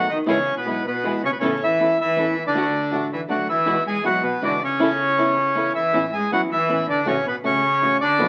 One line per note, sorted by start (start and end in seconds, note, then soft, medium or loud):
0.00 0.10 F#5 medium
0.10 0.19 D#3 medium
0.10 0.18 D#4 medium
0.10 0.18 D#5 medium
0.26 0.44 E2 medium
0.26 0.36 B2 medium
0.26 0.55 C#3 medium
0.26 0.36 E3 medium
0.26 0.36 G#3 medium
0.26 0.36 B3 medium
0.26 0.44 B3 medium
0.26 0.55 C#4 medium
0.26 0.36 E4 medium
0.26 0.44 E4 medium
0.26 0.44 G#4 medium
0.26 0.55 C#5 medium
0.57 0.83 B2 medium
0.57 0.83 B3 medium
0.57 0.86 B4 medium
0.65 0.82 B1 medium
0.65 0.82 B2 medium
0.65 0.83 E3 medium
0.65 0.83 G#3 medium
0.65 0.82 B3 soft
0.65 0.83 B3 medium
0.65 0.82 E4 soft
0.65 0.83 E4 medium
0.65 0.82 G#4 medium
0.86 1.21 B2 medium
0.86 1.22 B3 medium
0.86 1.22 B4 medium
1.03 1.21 E2 medium
1.03 1.21 B2 medium
1.03 1.21 E3 medium
1.03 1.21 G#3 medium
1.03 1.21 B3 medium
1.03 1.20 B3 soft
1.03 1.21 E4 medium
1.03 1.20 E4 soft
1.03 1.21 G#4 medium
1.23 1.30 C#3 medium
1.23 1.31 C#4 medium
1.23 1.31 C#5 medium
1.30 1.37 B2 medium
1.30 1.38 B4 medium
1.39 1.58 A1 loud
1.39 1.60 C#3 medium
1.39 1.50 E3 medium
1.39 1.51 B3 medium
1.39 1.58 B3 medium
1.39 1.61 C#4 medium
1.39 1.51 C#4 medium
1.39 1.58 C#4 medium
1.39 1.51 E4 medium
1.39 1.58 A4 medium
1.39 1.63 C#5 medium
1.63 1.98 E3 medium
1.63 1.98 E4 medium
1.63 1.99 E5 medium
1.79 1.96 E1 medium
1.79 1.96 E3 medium
1.79 1.97 B3 medium
1.79 1.96 B3 soft
1.79 1.97 C#4 medium
1.79 1.96 C#4 soft
1.79 1.97 E4 medium
1.79 1.96 A4 medium
2.00 2.43 E3 medium
2.00 2.44 E4 medium
2.00 2.43 E5 medium
2.16 2.33 A1 medium
2.16 2.34 E3 medium
2.16 2.34 B3 medium
2.16 2.34 C#4 medium
2.16 2.34 C#4 soft
2.16 2.35 E4 medium
2.16 2.34 A4 medium
2.37 2.55 C2 medium
2.47 3.07 D3 medium
2.47 3.08 D4 medium
2.47 3.07 D5 medium
2.53 2.71 D2 loud
2.53 2.63 D3 medium
2.53 2.63 A3 medium
2.53 2.71 A3 medium
2.53 2.64 D4 medium
2.53 2.71 D4 medium
2.53 2.64 F#4 loud
2.53 2.71 F#4 medium
2.91 3.08 A1 medium
2.91 3.08 D3 medium
2.91 3.07 A3 soft
2.91 3.08 A3 medium
2.91 3.08 D4 soft
2.91 3.09 D4 medium
2.91 3.08 F#4 medium
2.91 3.09 F#4 medium
3.13 3.21 E3 medium
3.13 3.21 E4 medium
3.13 3.21 E5 medium
3.28 3.45 D2 medium
3.28 3.46 D3 medium
3.28 3.48 F#3 medium
3.28 3.46 A3 medium
3.28 3.45 A3 soft
3.28 3.45 D4 medium
3.28 3.46 D4 medium
3.28 3.45 F#4 medium
3.28 3.46 F#4 medium
3.28 3.48 F#4 medium
3.28 3.47 F#5 medium
3.49 3.66 D2 medium
3.49 3.84 E3 medium
3.49 3.84 E4 medium
3.49 3.84 E5 medium
3.66 3.83 E2 loud
3.66 3.75 B2 medium
3.66 3.75 E3 loud
3.66 3.82 G#3 medium
3.66 3.76 G#3 medium
3.66 3.75 B3 medium
3.66 3.82 E4 medium
3.66 3.83 F#4 medium
3.66 3.76 F#4 medium
3.87 4.04 G#3 medium
3.87 4.04 G#4 medium
3.87 4.06 G#5 medium
4.03 4.20 B1 medium
4.03 4.21 B2 medium
4.03 4.21 E3 medium
4.03 4.22 F#3 medium
4.03 4.21 G#3 medium
4.03 4.20 G#3 medium
4.03 4.21 B3 medium
4.03 4.20 E4 soft
4.03 4.20 F#4 medium
4.03 4.21 F#4 medium
4.03 4.22 F#4 medium
4.03 4.23 F#5 loud
4.23 4.42 B2 medium
4.23 4.41 B3 medium
4.23 4.43 B4 medium
4.42 4.58 E2 medium
4.42 4.59 B2 medium
4.42 4.61 D3 medium
4.42 4.59 E3 medium
4.42 4.59 G#3 medium
4.42 4.58 G#3 medium
4.42 4.59 B3 medium
4.42 4.60 D4 medium
4.42 4.58 E4 soft
4.42 4.60 F#4 medium
4.42 4.59 F#4 medium
4.42 4.62 D5 medium
4.63 5.72 C#3 medium
4.63 5.72 C#4 medium
4.63 5.73 C#5 medium
4.79 4.88 E3 medium
4.79 4.88 B3 medium
4.79 4.96 B3 medium
4.79 4.89 C#4 medium
4.79 4.96 C#4 medium
4.79 4.89 E4 loud
4.79 4.96 A4 medium
5.17 5.34 E3 medium
5.17 5.35 B3 medium
5.17 5.34 B3 soft
5.17 5.34 C#4 soft
5.17 5.35 C#4 medium
5.17 5.35 E4 medium
5.17 5.34 A4 medium
5.55 5.73 E3 medium
5.55 5.73 B3 medium
5.55 5.72 B3 medium
5.55 5.73 C#4 medium
5.55 5.72 C#4 soft
5.55 5.73 E4 medium
5.55 5.72 A4 medium
5.75 6.11 E3 medium
5.75 6.11 E4 medium
5.75 6.14 E5 loud
5.93 6.10 A1 loud
5.93 6.02 E3 medium
5.93 6.03 B3 medium
5.93 6.03 C#4 medium
5.93 6.03 E4 medium
6.13 6.31 G#3 medium
6.13 6.31 G#4 medium
6.13 6.30 G#5 medium
6.31 6.48 E1 medium
6.31 6.48 E3 medium
6.31 6.41 F#3 medium
6.31 6.49 B3 medium
6.31 6.49 C#4 medium
6.31 6.49 E4 medium
6.31 6.41 F#4 medium
6.31 6.41 F#5 medium
6.51 6.86 E3 medium
6.51 6.87 E4 medium
6.51 6.86 E5 medium
6.69 6.85 A1 medium
6.69 6.86 E3 medium
6.69 6.86 B3 medium
6.69 6.87 C#4 medium
6.69 6.87 E4 medium
6.88 7.06 D3 medium
6.88 7.07 D4 medium
6.88 7.06 D5 medium
7.05 7.23 A1 loud
7.05 7.24 C#3 medium
7.05 7.15 A3 medium
7.05 7.15 C#4 medium
7.05 7.25 C#4 medium
7.05 7.16 F#4 loud
7.05 7.27 C#5 medium
7.26 7.34 B2 medium
7.26 7.36 B3 medium
7.26 7.36 B4 medium
7.44 7.60 A1 medium
7.44 7.97 C#3 medium
7.44 7.61 A3 medium
7.44 7.61 C#4 medium
7.44 7.97 C#4 medium
7.44 7.61 F#4 medium
7.44 7.97 C#5 loud
7.81 7.98 A1 medium
7.81 7.98 A3 medium
7.81 7.99 C#4 medium
7.81 7.99 F#4 medium
8.01 8.28 D3 medium
8.01 8.28 D4 medium
8.01 8.28 D5 loud
8.19 8.28 B1 loud
8.19 8.28 B2 medium
8.19 8.28 D3 medium
8.19 8.28 A3 medium
8.19 8.28 B3 loud
8.19 8.28 F#4 loud